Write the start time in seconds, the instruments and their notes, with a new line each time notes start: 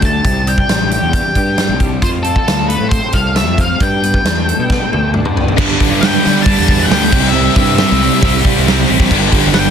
Already playing: picked electric bass D2, clean electric guitar D4
0.02 clean electric guitar A3, lead electric guitar A5, kick, closed hi-hat
0.24 picked electric bass C2, clean electric guitar C3, kick, closed hi-hat
0.47 clean electric guitar G3, lead electric guitar G5, closed hi-hat
0.58 kick
0.69 picked electric bass A1, clean electric guitar D4, snare, closed hi-hat
0.91 clean electric guitar G4, lead electric guitar G5, closed hi-hat
1.02 picked electric bass E2
1.13 clean electric guitar G3, kick, closed hi-hat
1.35 picked electric bass G2, clean electric guitar G4, kick, closed hi-hat
1.56 clean electric guitar D4, snare, closed hi-hat
1.69 picked electric bass C2
1.79 clean electric guitar G3, kick, closed hi-hat
2.02 picked electric bass F2, clean electric guitar F3, lead electric guitar C5, kick, closed hi-hat
2.23 clean electric guitar C4, lead electric guitar A4, closed hi-hat
2.36 kick
2.47 picked electric bass D2, clean electric guitar F4, snare, closed hi-hat
2.69 clean electric guitar A4, lead electric guitar B4, closed hi-hat
2.80 picked electric bass A2
2.89 clean electric guitar C4, lead electric guitar C5, kick, closed hi-hat
3.12 picked electric bass C2, clean electric guitar A4, lead electric guitar F5, kick, closed hi-hat
3.36 clean electric guitar F4, lead electric guitar E5, snare, closed hi-hat
3.46 picked electric bass F2
3.58 clean electric guitar C4, lead electric guitar F5, kick, closed hi-hat
3.80 picked electric bass G2, clean electric guitar G3, lead electric guitar G5, kick, closed hi-hat
4.03 clean electric guitar B3, closed hi-hat
4.14 kick
4.25 picked electric bass E2, clean electric guitar D4, snare, closed hi-hat
4.49 clean electric guitar A4, closed hi-hat
4.59 picked electric bass B2
4.70 clean electric guitar B3, kick, snare
4.92 picked electric bass D2, clean electric guitar A4, high tom
5.14 clean electric guitar D4, mid tom
5.25 picked electric bass G2, mid tom
5.36 clean electric guitar B3, floor tom
5.48 floor tom
5.57 distorted electric guitar G2 D3 G3 B3 D4, picked electric bass G2, string section G4 B4 D5 B5, kick, crash
5.80 kick, open hi-hat
5.90 picked electric bass G2
6.01 distorted electric guitar G2 D3 G3 B3 D4, lead electric guitar G5, snare, open hi-hat
6.23 distorted electric guitar G2 D3 G3 B3 D4, picked electric bass G3, snare, open hi-hat
6.42 distorted electric guitar G2 D3 G3, lead electric guitar A5, kick, open hi-hat
6.47 distorted electric guitar B3 D4
6.59 picked electric bass E2
6.68 kick, open hi-hat
6.83 lead electric guitar F#5 G5
6.91 picked electric bass D2, distorted electric guitar G2 D3 G3 B3 D4, snare, open hi-hat
7.11 picked electric bass C2, distorted electric guitar C3 G3 C4 E4, string section C5 E5 C6, kick, crash
7.24 snare
7.29 lead electric guitar E5
7.34 distorted electric guitar C3 G3 C4 E4
7.56 picked electric bass G2, kick, open hi-hat
7.76 distorted electric guitar C3 G3 C4 E4, lead electric guitar E5, snare, open hi-hat
7.92 picked electric bass C2
7.99 distorted electric guitar C3 G3 C4 E4, open hi-hat
8.23 picked electric bass C2, distorted electric guitar C3 G3 C4 E4, kick, open hi-hat
8.45 kick, open hi-hat
8.58 picked electric bass C2
8.65 distorted electric guitar C3 G3 C4 E4, snare, open hi-hat
8.88 picked electric bass A1, distorted electric guitar C3 G3 C4 E4, open hi-hat
9.00 kick, snare
9.10 picked electric bass G1, distorted electric guitar G2 D3 G3 B3 D4, string section B4 D5 B5, kick, crash
9.32 kick, open hi-hat
9.47 picked electric bass G1
9.53 distorted electric guitar G2 D3 G3 B3 D4, lead electric guitar G5, snare, open hi-hat